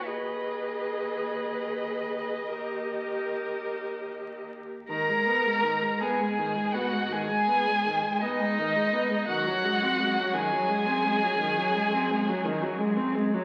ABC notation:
X:1
M:12/8
L:1/16
Q:3/8=54
K:G#m
V:1 name="Violin"
d16- d6 z2 | a6 g4 f2 g6 d6 | f6 g16 z2 |]
V:2 name="Violin"
B12 A8- A3 z | A6 G4 F2 G6 D6 | F6 G16 z2 |]
V:3 name="Viola" clef=bass
G12 =G8- G3 z | D, G, B, G, D, G, B, G, D, G, B, G, D, G, B, G, D, G, B, G, D, G, B, G, | D, F, G, ^B, G, F, D, F, G, B, G, F, D, F, G, B, G, F, D, F, G, B, G, F, |]
V:4 name="Cello" clef=bass
D,,12 D,,8- D,,3 z | G,,24 | F,,24 |]